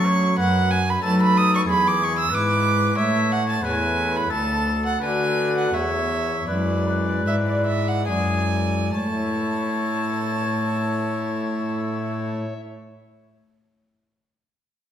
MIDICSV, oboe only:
0, 0, Header, 1, 2, 480
1, 0, Start_track
1, 0, Key_signature, 3, "major"
1, 0, Tempo, 648649
1, 283, Time_signature, 4, 2, 24, 8
1, 2688, Tempo, 689655
1, 3648, Tempo, 732601
1, 4608, Tempo, 791557
1, 5568, Tempo, 874636
1, 9332, End_track
2, 0, Start_track
2, 0, Title_t, "Oboe"
2, 0, Program_c, 0, 68
2, 41, Note_on_c, 0, 73, 74
2, 269, Note_off_c, 0, 73, 0
2, 273, Note_on_c, 0, 71, 73
2, 580, Note_off_c, 0, 71, 0
2, 759, Note_on_c, 0, 69, 61
2, 1232, Note_on_c, 0, 68, 68
2, 1244, Note_off_c, 0, 69, 0
2, 1702, Note_on_c, 0, 71, 72
2, 1713, Note_off_c, 0, 68, 0
2, 2186, Note_off_c, 0, 71, 0
2, 2190, Note_on_c, 0, 73, 71
2, 2680, Note_on_c, 0, 71, 61
2, 2691, Note_off_c, 0, 73, 0
2, 3145, Note_off_c, 0, 71, 0
2, 3149, Note_on_c, 0, 69, 64
2, 3632, Note_off_c, 0, 69, 0
2, 3640, Note_on_c, 0, 71, 65
2, 4107, Note_off_c, 0, 71, 0
2, 4119, Note_on_c, 0, 73, 62
2, 4597, Note_off_c, 0, 73, 0
2, 4607, Note_on_c, 0, 71, 57
2, 4834, Note_off_c, 0, 71, 0
2, 4841, Note_on_c, 0, 71, 59
2, 5342, Note_off_c, 0, 71, 0
2, 5563, Note_on_c, 0, 68, 47
2, 5787, Note_off_c, 0, 68, 0
2, 6048, Note_on_c, 0, 73, 48
2, 7902, Note_off_c, 0, 73, 0
2, 9332, End_track
0, 0, End_of_file